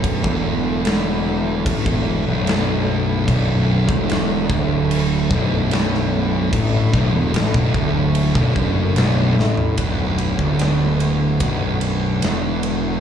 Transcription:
<<
  \new Staff \with { instrumentName = "Tonewheel organ" } { \clef bass \time 4/4 \key b \minor \tempo 4 = 74 <d fis a>1~ | <d fis a>1~ | <d fis a>1 | <d b fis'>1 | }
  \new Staff \with { instrumentName = "Distorted electric guitar" } { \clef bass \time 4/4 \key b \minor b,,16 e,4.~ e,16 a,16 e,8 b,,4~ b,,16 | b,,8. e,8. d,4 b,,4. | a,8 b,,16 e,16 a,16 b,,16 d,8. b,,16 fis,8 b,,8 a,8 | b,,8. d,4~ d,16 b,,4 e,4 | }
  \new Staff \with { instrumentName = "Distorted electric guitar" } { \clef bass \time 4/4 \key b \minor b,,16 e,4.~ e,16 a,16 e,8 b,,4~ b,,16 | b,,8. e,8. d,4 b,,4. | a,8 b,,16 e,16 a,16 b,,16 d,8. b,,16 fis,8 b,,8 a,8 | b,,8. d,4~ d,16 b,,4 e,4 | }
  \new Staff \with { instrumentName = "Picked electric bass" } { \clef bass \time 4/4 \key b \minor b,,,16 e,,4.~ e,,16 a,,16 e,,8 b,,,4~ b,,,16 | b,,,8. e,,8. d,,4 b,,,4. | a,,8 b,,,16 e,,16 a,,16 b,,,16 d,,8. b,,,16 fis,,8 b,,,8 a,,8 | b,,,8. d,,4~ d,,16 b,,,4 e,,4 | }
  \new DrumStaff \with { instrumentName = "Drums" } \drummode { \time 4/4 <cymc bd>16 bd8. <cymc sn>4 <cymc bd>16 bd8. <cymc sn>4 | <cymc bd>8. bd16 <cymc sn>8 bd8 cymc8 bd8 <cymc sn>16 sn8. | <cymc bd>8 bd8 <cymc sn>16 bd16 bd8 cymc16 bd16 bd8 <cymc sn>8 sn16 tomfh16 | <bd cymr>8 cymr16 bd16 <cymr sn>8 cymr8 <bd cymr>8 cymr8 <cymr sn>8 cymr8 | }
>>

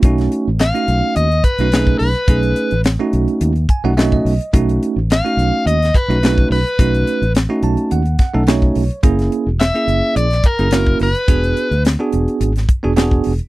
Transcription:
<<
  \new Staff \with { instrumentName = "Overdriven electric guitar" } { \time 4/4 \key b \mixolydian \tempo 4 = 107 r4 eis''4 dis''8 b'4 b'8~ | b'4 r2. | r4 eis''4 dis''8 b'4 b'8~ | b'4 r2. |
r4 e''4 d''8 ais'4 b'8~ | b'4 r2. | }
  \new Staff \with { instrumentName = "Tine electric piano" } { \time 4/4 \key b \mixolydian << { r1 | r2 r8 gis''16 fis''16 dis''16 dis''8. | r1 | r4. a''8 fis''8 fis''8 cis''4 |
r1 | r1 | } \\ { <a cis' dis' fis'>8. r8 <a cis' dis' fis'>4 r8 <a cis' dis' fis'>16 <a cis' dis' gis'>8 r8 | <a cis' dis' gis'>8. r8 <a cis' dis' fis'>4 r8 <a cis' dis' fis'>16 <a cis' dis' fis'>8 r8 | <a cis' dis' fis'>8. r8 <a cis' dis' fis'>4 r8 <a cis' dis' fis'>16 <a cis' dis' fis'>8 r8 | <a cis' dis' fis'>8. r8 <a cis' dis' fis'>4 r8 <a cis' dis' a'>16 <a cis' dis' fis'>8 r8 |
<ais cis' e' gis'>8. r8 <ais cis' e' gis'>4 r8 <ais cis' e' gis'>16 <ais cis' e' fis'>8 r8 | <b d' fis' gis'>8. r8 <b d' fis' gis'>4 r8 <b d' fis' gis'>16 <b d' fis' gis'>8 r8 | } >> }
  \new Staff \with { instrumentName = "Fingered electric bass" } { \clef bass \time 4/4 \key b \mixolydian b,,8 r16 a,,8 r16 b,,16 r16 dis,8 r16 b,,8. b,,16 r16 | b,,8 r16 a,,8 r16 b,,16 r16 dis,8 r16 b,,8. b,,16 r16 | b,,8 r16 a,,8 r16 b,,16 r16 dis,8 r16 b,,8. b,,16 r16 | b,,8 r16 a,,8 r16 b,,16 r16 dis,8 r16 b,,8. b,,16 r16 |
fis,,8 r16 e,,8 r16 fis,,16 r16 ais,,8 r16 fis,,8. fis,,16 r16 | e,,8 r16 d,8 r16 e,,16 r16 gis,,8 r16 e,,8. e,,16 r16 | }
  \new DrumStaff \with { instrumentName = "Drums" } \drummode { \time 4/4 <hh bd>16 <hh sn>16 hh8 <hh sn>16 hh16 hh8 hh16 hh16 <hh bd>16 hh16 <hh sn>16 bd16 hho16 hh16 | <hh bd>16 hh16 hh16 hh16 <hh sn>8 hh16 hh16 hh16 hh16 <hh bd>8 <hh sn>16 bd16 hho16 hh16 | <hh bd>16 hh16 hh8 <hh sn>16 hh16 hh8 hh16 <hh sn>16 <hh bd>16 hh16 <hh sn>16 bd16 hho16 hh16 | <hh bd>16 hh16 hh16 hh16 <hh sn>8 hh16 hh16 hh16 hh16 <hh bd sn>8 <hh sn>16 bd16 hho16 hh16 |
<hh bd>16 <hh sn>16 hh8 <hh sn>16 hh16 hh8 hh16 <hh sn>16 <hh bd>16 hh16 <hh sn>16 bd16 hho16 hh16 | <hh bd>16 hh16 hh16 hh16 <hh sn>8 hh16 hh16 hh16 <hh sn>16 <hh bd>8 <hh sn>16 bd16 hho16 hh16 | }
>>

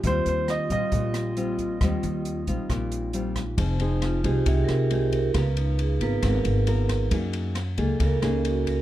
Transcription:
<<
  \new Staff \with { instrumentName = "Grand piano" } { \time 4/4 \key ees \major \tempo 4 = 136 c''8 c''8 ees''8 ees''2~ ees''8~ | ees''2. r4 | r1 | r1 |
r1 | }
  \new Staff \with { instrumentName = "Vibraphone" } { \time 4/4 \key ees \major g'8 r2. f'8~ | f'4. ees'2~ ees'8~ | ees'8 ees'8 f'8 g'8 \tuplet 3/2 { aes'8 bes'8 aes'8 } g'8 bes'8 | ces''8 ees'8 aes'8 ces''8 bes'4. r8 |
r4. a'8 bes'8 des'8 ges'8 bes'8 | }
  \new Staff \with { instrumentName = "Pan flute" } { \time 4/4 \key ees \major f'1~ | f'2.~ f'8 r8 | r1 | r1 |
r1 | }
  \new Staff \with { instrumentName = "Nylon-string guitar" } { \time 4/4 \key ees \major << { <g c' f'>4. <g c' f'>4. <g c' f'>4 | <g c' f'>4. <g c' f'>4. <g c' f'>8 r8 | <c' ees' aes'>8 <c' ees' aes'>4 <c' ees' aes'>4. <c' ees' aes'>8 r8 | <ces' f' bes'>4. <ces' f' bes'>4. <ces' f' bes'>4 |
<bes ees' aes'>4 r8 <bes ees' aes'>4 <bes ees' aes'>4. | } \\ { ees2 bes,2 | ees2 bes,2 | f2 c2 | des2 aes,2 |
ges2 des2 | } >> }
  \new Staff \with { instrumentName = "Upright bass" } { \clef bass \time 4/4 \key ees \major ees,8 ees,4 bes,,16 r16 bes,,2 | ees,8 ees,4 bes,,16 r16 bes,,2 | f,,4. c,8 c,8 c,4. | des,4. aes,,8 aes,,8 aes,,4. |
ges,4. des,8 des,8 des,4. | }
  \new DrumStaff \with { instrumentName = "Drums" } \drummode { \time 4/4 <hh bd>8 hh8 <hh ss>8 <hh bd>8 <hh bd>8 <hh ss>8 hh8 <hh bd>8 | <hh bd ss>8 hh8 hh8 <hh bd>8 <hh bd ss>8 hh8 hh8 <hh bd ss>8 | <bd cymr>8 cymr8 <cymr ss>8 <bd cymr>8 <bd cymr>8 <cymr ss>8 cymr8 <bd cymr>8 | <bd cymr ss>8 cymr8 cymr8 <bd cymr>8 <bd cymr ss>8 cymr8 cymr8 <bd cymr ss>8 |
<bd cymr>8 cymr8 <cymr ss>8 <bd cymr>8 <bd cymr>8 <cymr ss>8 cymr8 <bd cymr>8 | }
>>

